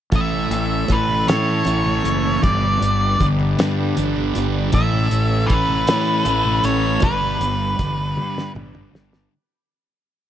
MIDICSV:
0, 0, Header, 1, 6, 480
1, 0, Start_track
1, 0, Tempo, 766284
1, 74, Time_signature, 6, 3, 24, 8
1, 6451, End_track
2, 0, Start_track
2, 0, Title_t, "Lead electric guitar"
2, 0, Program_c, 0, 29
2, 98, Note_on_c, 0, 76, 111
2, 577, Note_on_c, 0, 71, 81
2, 584, Note_off_c, 0, 76, 0
2, 793, Note_off_c, 0, 71, 0
2, 804, Note_on_c, 0, 73, 88
2, 1522, Note_off_c, 0, 73, 0
2, 1524, Note_on_c, 0, 74, 85
2, 2041, Note_off_c, 0, 74, 0
2, 2971, Note_on_c, 0, 76, 104
2, 3429, Note_on_c, 0, 71, 93
2, 3463, Note_off_c, 0, 76, 0
2, 4166, Note_on_c, 0, 73, 91
2, 4178, Note_off_c, 0, 71, 0
2, 4405, Note_on_c, 0, 71, 84
2, 4411, Note_off_c, 0, 73, 0
2, 5334, Note_off_c, 0, 71, 0
2, 6451, End_track
3, 0, Start_track
3, 0, Title_t, "Transistor combo organ"
3, 0, Program_c, 1, 18
3, 70, Note_on_c, 1, 57, 68
3, 70, Note_on_c, 1, 64, 61
3, 72, Note_on_c, 1, 69, 75
3, 75, Note_on_c, 1, 61, 59
3, 1507, Note_off_c, 1, 57, 0
3, 1507, Note_off_c, 1, 64, 0
3, 1508, Note_off_c, 1, 69, 0
3, 1509, Note_off_c, 1, 61, 0
3, 1518, Note_on_c, 1, 59, 60
3, 1521, Note_on_c, 1, 55, 65
3, 1522, Note_on_c, 1, 62, 62
3, 1522, Note_on_c, 1, 67, 73
3, 2949, Note_off_c, 1, 59, 0
3, 2951, Note_off_c, 1, 55, 0
3, 2951, Note_off_c, 1, 62, 0
3, 2951, Note_off_c, 1, 67, 0
3, 2967, Note_on_c, 1, 61, 58
3, 2968, Note_on_c, 1, 69, 76
3, 2971, Note_on_c, 1, 64, 59
3, 2974, Note_on_c, 1, 57, 71
3, 4389, Note_off_c, 1, 61, 0
3, 4390, Note_off_c, 1, 69, 0
3, 4391, Note_off_c, 1, 64, 0
3, 4393, Note_off_c, 1, 57, 0
3, 4402, Note_on_c, 1, 62, 65
3, 4403, Note_on_c, 1, 59, 61
3, 4407, Note_on_c, 1, 67, 74
3, 4410, Note_on_c, 1, 55, 66
3, 5820, Note_off_c, 1, 62, 0
3, 5821, Note_off_c, 1, 59, 0
3, 5823, Note_off_c, 1, 67, 0
3, 5824, Note_off_c, 1, 55, 0
3, 6451, End_track
4, 0, Start_track
4, 0, Title_t, "Distorted electric guitar"
4, 0, Program_c, 2, 30
4, 78, Note_on_c, 2, 45, 67
4, 559, Note_on_c, 2, 52, 69
4, 803, Note_on_c, 2, 61, 71
4, 1043, Note_on_c, 2, 64, 74
4, 1284, Note_off_c, 2, 45, 0
4, 1284, Note_on_c, 2, 57, 67
4, 1524, Note_off_c, 2, 52, 0
4, 1524, Note_off_c, 2, 57, 0
4, 1524, Note_off_c, 2, 64, 0
4, 1524, Note_on_c, 2, 43, 73
4, 1525, Note_off_c, 2, 61, 0
4, 2009, Note_on_c, 2, 50, 68
4, 2244, Note_on_c, 2, 59, 75
4, 2485, Note_on_c, 2, 62, 77
4, 2724, Note_on_c, 2, 55, 62
4, 2727, Note_off_c, 2, 43, 0
4, 2959, Note_on_c, 2, 45, 70
4, 2966, Note_off_c, 2, 55, 0
4, 2966, Note_off_c, 2, 59, 0
4, 2966, Note_off_c, 2, 62, 0
4, 2968, Note_off_c, 2, 50, 0
4, 3447, Note_on_c, 2, 52, 71
4, 3686, Note_on_c, 2, 61, 68
4, 3925, Note_on_c, 2, 64, 72
4, 4161, Note_off_c, 2, 45, 0
4, 4167, Note_on_c, 2, 57, 68
4, 4403, Note_on_c, 2, 43, 67
4, 4404, Note_off_c, 2, 52, 0
4, 4404, Note_off_c, 2, 61, 0
4, 4404, Note_off_c, 2, 64, 0
4, 4405, Note_off_c, 2, 57, 0
4, 4886, Note_on_c, 2, 50, 72
4, 5128, Note_on_c, 2, 59, 74
4, 5366, Note_on_c, 2, 62, 69
4, 5597, Note_off_c, 2, 43, 0
4, 5606, Note_on_c, 2, 55, 65
4, 5838, Note_off_c, 2, 50, 0
4, 5839, Note_off_c, 2, 59, 0
4, 5839, Note_off_c, 2, 62, 0
4, 5840, Note_off_c, 2, 55, 0
4, 6451, End_track
5, 0, Start_track
5, 0, Title_t, "Fingered electric bass"
5, 0, Program_c, 3, 33
5, 77, Note_on_c, 3, 33, 88
5, 288, Note_off_c, 3, 33, 0
5, 315, Note_on_c, 3, 33, 85
5, 527, Note_off_c, 3, 33, 0
5, 561, Note_on_c, 3, 33, 84
5, 771, Note_off_c, 3, 33, 0
5, 799, Note_on_c, 3, 45, 87
5, 1011, Note_off_c, 3, 45, 0
5, 1041, Note_on_c, 3, 33, 82
5, 1253, Note_off_c, 3, 33, 0
5, 1277, Note_on_c, 3, 30, 85
5, 1491, Note_off_c, 3, 30, 0
5, 1525, Note_on_c, 3, 31, 88
5, 1736, Note_off_c, 3, 31, 0
5, 1762, Note_on_c, 3, 31, 88
5, 1974, Note_off_c, 3, 31, 0
5, 2008, Note_on_c, 3, 31, 81
5, 2217, Note_off_c, 3, 31, 0
5, 2248, Note_on_c, 3, 43, 79
5, 2458, Note_off_c, 3, 43, 0
5, 2489, Note_on_c, 3, 31, 89
5, 2699, Note_off_c, 3, 31, 0
5, 2730, Note_on_c, 3, 31, 78
5, 2939, Note_off_c, 3, 31, 0
5, 2967, Note_on_c, 3, 33, 87
5, 3177, Note_off_c, 3, 33, 0
5, 3205, Note_on_c, 3, 33, 89
5, 3416, Note_off_c, 3, 33, 0
5, 3444, Note_on_c, 3, 33, 83
5, 3655, Note_off_c, 3, 33, 0
5, 3688, Note_on_c, 3, 45, 84
5, 3897, Note_off_c, 3, 45, 0
5, 3919, Note_on_c, 3, 33, 90
5, 4132, Note_off_c, 3, 33, 0
5, 4159, Note_on_c, 3, 33, 80
5, 4371, Note_off_c, 3, 33, 0
5, 4403, Note_on_c, 3, 31, 95
5, 4613, Note_off_c, 3, 31, 0
5, 4637, Note_on_c, 3, 31, 93
5, 4849, Note_off_c, 3, 31, 0
5, 4881, Note_on_c, 3, 31, 83
5, 5090, Note_off_c, 3, 31, 0
5, 5113, Note_on_c, 3, 43, 82
5, 5325, Note_off_c, 3, 43, 0
5, 5354, Note_on_c, 3, 31, 88
5, 5565, Note_off_c, 3, 31, 0
5, 5593, Note_on_c, 3, 31, 83
5, 5804, Note_off_c, 3, 31, 0
5, 6451, End_track
6, 0, Start_track
6, 0, Title_t, "Drums"
6, 75, Note_on_c, 9, 42, 85
6, 75, Note_on_c, 9, 63, 93
6, 78, Note_on_c, 9, 36, 98
6, 137, Note_off_c, 9, 42, 0
6, 137, Note_off_c, 9, 63, 0
6, 141, Note_off_c, 9, 36, 0
6, 196, Note_on_c, 9, 64, 63
6, 258, Note_off_c, 9, 64, 0
6, 321, Note_on_c, 9, 42, 68
6, 384, Note_off_c, 9, 42, 0
6, 434, Note_on_c, 9, 64, 26
6, 496, Note_off_c, 9, 64, 0
6, 553, Note_on_c, 9, 63, 91
6, 563, Note_on_c, 9, 36, 82
6, 563, Note_on_c, 9, 42, 67
6, 616, Note_off_c, 9, 63, 0
6, 625, Note_off_c, 9, 42, 0
6, 626, Note_off_c, 9, 36, 0
6, 674, Note_on_c, 9, 64, 71
6, 736, Note_off_c, 9, 64, 0
6, 804, Note_on_c, 9, 42, 95
6, 812, Note_on_c, 9, 38, 114
6, 867, Note_off_c, 9, 42, 0
6, 874, Note_off_c, 9, 38, 0
6, 1032, Note_on_c, 9, 63, 88
6, 1044, Note_on_c, 9, 42, 62
6, 1095, Note_off_c, 9, 63, 0
6, 1107, Note_off_c, 9, 42, 0
6, 1155, Note_on_c, 9, 64, 67
6, 1217, Note_off_c, 9, 64, 0
6, 1285, Note_on_c, 9, 42, 68
6, 1348, Note_off_c, 9, 42, 0
6, 1520, Note_on_c, 9, 63, 101
6, 1525, Note_on_c, 9, 42, 81
6, 1528, Note_on_c, 9, 36, 94
6, 1582, Note_off_c, 9, 63, 0
6, 1588, Note_off_c, 9, 42, 0
6, 1590, Note_off_c, 9, 36, 0
6, 1635, Note_on_c, 9, 64, 76
6, 1697, Note_off_c, 9, 64, 0
6, 1769, Note_on_c, 9, 42, 70
6, 1832, Note_off_c, 9, 42, 0
6, 1882, Note_on_c, 9, 64, 27
6, 1945, Note_off_c, 9, 64, 0
6, 2005, Note_on_c, 9, 63, 92
6, 2009, Note_on_c, 9, 36, 79
6, 2009, Note_on_c, 9, 42, 66
6, 2068, Note_off_c, 9, 63, 0
6, 2072, Note_off_c, 9, 36, 0
6, 2072, Note_off_c, 9, 42, 0
6, 2127, Note_on_c, 9, 64, 73
6, 2190, Note_off_c, 9, 64, 0
6, 2247, Note_on_c, 9, 42, 93
6, 2255, Note_on_c, 9, 38, 106
6, 2310, Note_off_c, 9, 42, 0
6, 2317, Note_off_c, 9, 38, 0
6, 2486, Note_on_c, 9, 42, 64
6, 2488, Note_on_c, 9, 63, 88
6, 2549, Note_off_c, 9, 42, 0
6, 2551, Note_off_c, 9, 63, 0
6, 2604, Note_on_c, 9, 64, 66
6, 2666, Note_off_c, 9, 64, 0
6, 2726, Note_on_c, 9, 42, 60
6, 2788, Note_off_c, 9, 42, 0
6, 2958, Note_on_c, 9, 63, 95
6, 2960, Note_on_c, 9, 42, 82
6, 2968, Note_on_c, 9, 36, 91
6, 3020, Note_off_c, 9, 63, 0
6, 3023, Note_off_c, 9, 42, 0
6, 3030, Note_off_c, 9, 36, 0
6, 3080, Note_on_c, 9, 64, 70
6, 3143, Note_off_c, 9, 64, 0
6, 3203, Note_on_c, 9, 42, 60
6, 3266, Note_off_c, 9, 42, 0
6, 3443, Note_on_c, 9, 42, 65
6, 3447, Note_on_c, 9, 36, 78
6, 3506, Note_off_c, 9, 42, 0
6, 3510, Note_off_c, 9, 36, 0
6, 3557, Note_on_c, 9, 64, 77
6, 3620, Note_off_c, 9, 64, 0
6, 3680, Note_on_c, 9, 42, 91
6, 3687, Note_on_c, 9, 38, 118
6, 3742, Note_off_c, 9, 42, 0
6, 3750, Note_off_c, 9, 38, 0
6, 3916, Note_on_c, 9, 63, 94
6, 3920, Note_on_c, 9, 42, 65
6, 3979, Note_off_c, 9, 63, 0
6, 3982, Note_off_c, 9, 42, 0
6, 4033, Note_on_c, 9, 64, 72
6, 4096, Note_off_c, 9, 64, 0
6, 4157, Note_on_c, 9, 42, 60
6, 4220, Note_off_c, 9, 42, 0
6, 4387, Note_on_c, 9, 63, 101
6, 4398, Note_on_c, 9, 42, 83
6, 4403, Note_on_c, 9, 36, 105
6, 4449, Note_off_c, 9, 63, 0
6, 4461, Note_off_c, 9, 42, 0
6, 4466, Note_off_c, 9, 36, 0
6, 4518, Note_on_c, 9, 64, 71
6, 4580, Note_off_c, 9, 64, 0
6, 4641, Note_on_c, 9, 42, 67
6, 4704, Note_off_c, 9, 42, 0
6, 4881, Note_on_c, 9, 42, 71
6, 4882, Note_on_c, 9, 36, 78
6, 4882, Note_on_c, 9, 63, 94
6, 4943, Note_off_c, 9, 42, 0
6, 4945, Note_off_c, 9, 36, 0
6, 4945, Note_off_c, 9, 63, 0
6, 4995, Note_on_c, 9, 64, 69
6, 5058, Note_off_c, 9, 64, 0
6, 5119, Note_on_c, 9, 64, 29
6, 5122, Note_on_c, 9, 48, 57
6, 5182, Note_off_c, 9, 64, 0
6, 5185, Note_off_c, 9, 48, 0
6, 5250, Note_on_c, 9, 38, 62
6, 5313, Note_off_c, 9, 38, 0
6, 5359, Note_on_c, 9, 63, 81
6, 5359, Note_on_c, 9, 64, 26
6, 5363, Note_on_c, 9, 47, 70
6, 5421, Note_off_c, 9, 63, 0
6, 5421, Note_off_c, 9, 64, 0
6, 5426, Note_off_c, 9, 47, 0
6, 5472, Note_on_c, 9, 64, 68
6, 5480, Note_on_c, 9, 45, 71
6, 5535, Note_off_c, 9, 64, 0
6, 5543, Note_off_c, 9, 45, 0
6, 5607, Note_on_c, 9, 38, 87
6, 5670, Note_off_c, 9, 38, 0
6, 5720, Note_on_c, 9, 38, 77
6, 5783, Note_off_c, 9, 38, 0
6, 6451, End_track
0, 0, End_of_file